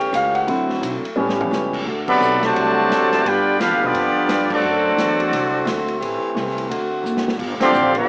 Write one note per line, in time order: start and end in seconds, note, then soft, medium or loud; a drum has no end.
0.00 0.12 E2 loud
0.00 0.45 E3 medium
0.00 1.83 A3 medium
0.00 0.46 C#4 medium
0.00 0.46 G4 medium
0.00 0.12 G5 medium
0.00 ride medium
0.13 0.46 C#2 loud
0.13 0.35 F5 medium
0.13 hi-hat pedal medium
0.13 ride medium
0.35 0.79 F#5 medium
0.35 ride soft
0.47 0.81 D2 medium
0.47 1.00 D3 medium
0.47 1.01 F#3 medium
0.47 1.01 C4 soft
0.47 1.00 C4 medium
0.47 1.02 E4 medium
0.47 1.00 F#4 medium
0.47 ride medium
0.69 snare soft
0.81 1.02 B1 loud
0.81 hi-hat pedal medium
0.81 ride medium
1.02 muted upright bass stroke soft
1.02 ride medium
1.16 1.50 A1 loud
1.16 1.86 E3 medium
1.16 1.82 G3 medium
1.16 1.83 B3 soft
1.16 1.83 C#4 medium
1.16 1.86 C#4 medium
1.16 1.86 G4 medium
1.29 snare medium
1.41 floor tom loud
1.51 1.85 C#2 loud
1.51 snare medium
1.51 hi-hat pedal medium
1.74 kick medium
1.74 crash medium
1.86 2.20 D2 medium
1.86 3.23 D3 medium
1.86 3.24 A3 medium
1.86 3.23 D4 medium
1.86 3.23 F#4 medium
2.06 2.40 C3 loud
2.06 2.39 F#3 loud
2.06 2.40 B3 loud
2.06 2.41 A4 medium
2.06 2.41 D5 loud
2.06 2.41 F#5 medium
2.06 2.41 B5 loud
2.06 kick loud
2.06 crash loud
2.21 2.54 B1 loud
2.21 hi-hat pedal medium
2.41 3.24 C3 loud
2.41 3.24 F#3 loud
2.41 3.24 A3 loud
2.41 3.26 F#4 medium
2.41 3.26 C5 medium
2.41 3.26 A5 loud
2.41 snare medium
2.41 ride medium
2.45 3.26 D5 loud
2.56 2.89 C2 medium
2.56 ride medium
2.89 3.23 D2 loud
2.89 snare medium
2.89 hi-hat pedal medium
2.89 ride medium
3.12 snare medium
3.12 ride medium
3.24 3.58 G2 medium
3.24 4.62 D3 medium
3.24 4.61 G3 medium
3.24 4.61 B3 medium
3.24 3.59 B3 medium
3.24 3.59 D4 medium
3.24 4.61 F4 medium
3.24 3.60 G4 loud
3.24 3.61 G5 loud
3.24 ride medium
3.28 3.61 F4 medium
3.28 3.60 B4 medium
3.28 3.61 D5 medium
3.59 3.70 E2 loud
3.59 3.81 B3 medium
3.59 3.81 D4 medium
3.59 3.82 D4 medium
3.59 3.81 F4 medium
3.59 3.82 G4 medium
3.59 3.82 B4 medium
3.59 3.82 F5 loud
3.59 snare medium
3.59 hi-hat pedal medium
3.59 ride medium
3.70 3.81 D2 medium
3.82 3.93 B1 medium
3.82 4.50 F3 medium
3.82 4.50 B3 medium
3.82 4.51 B3 medium
3.82 4.50 D4 medium
3.82 4.51 F4 medium
3.82 4.51 G4 medium
3.82 4.51 D5 loud
3.93 4.14 F2 medium
3.93 ride medium
4.15 muted upright bass stroke soft
4.28 4.62 G2 loud
4.28 snare medium
4.28 hi-hat pedal medium
4.28 ride medium
4.50 5.84 F#3 medium
4.50 5.84 A3 medium
4.50 5.86 C4 medium
4.50 5.84 D4 medium
4.50 5.86 F#4 medium
4.50 5.86 D5 loud
4.50 kick loud
4.50 crash medium
4.54 5.86 A4 medium
4.63 4.96 F#2 loud
4.63 6.00 D3 medium
4.63 7.37 A3 medium
4.63 7.36 C4 medium
4.63 6.00 F#4 medium
4.97 5.30 E2 loud
4.97 snare medium
4.97 hi-hat pedal medium
4.97 ride medium
5.20 ride medium
5.31 5.65 C2 loud
5.31 ride medium
5.65 5.99 D2 loud
5.65 snare medium
5.65 hi-hat pedal medium
5.65 ride medium
5.88 ride medium
6.00 6.21 A1 medium
6.00 6.69 E3 medium
6.00 6.69 G4 medium
6.00 ride medium
6.22 muted upright bass stroke soft
6.35 6.68 C2 loud
6.35 snare medium
6.35 hi-hat pedal medium
6.35 ride medium
6.58 ride medium
6.69 7.03 D2 medium
6.69 8.09 D3 medium
6.69 7.38 F#4 medium
6.69 ride medium
7.04 7.37 F#1 medium
7.04 hi-hat pedal medium
7.17 snare medium
7.28 snare medium
7.38 7.59 G1 medium
7.38 8.09 G3 medium
7.38 8.09 D4 medium
7.38 8.09 F4 medium
7.38 kick medium
7.38 crash loud
7.60 7.92 D3 loud
7.60 7.93 F3 loud
7.60 7.92 C4 loud
7.60 7.93 G4 loud
7.60 7.94 D5 medium
7.60 7.94 F5 medium
7.60 7.94 C6 loud
7.60 muted upright bass stroke soft
7.60 snare medium
7.60 ride medium
7.72 8.06 A1 loud
7.72 hi-hat pedal medium
7.95 8.09 D3 loud
7.95 8.09 F3 loud
7.95 8.09 B3 loud
7.95 8.09 G4 loud
7.95 8.09 D5 loud
7.95 8.09 F5 medium
7.95 8.09 B5 loud
7.95 ride medium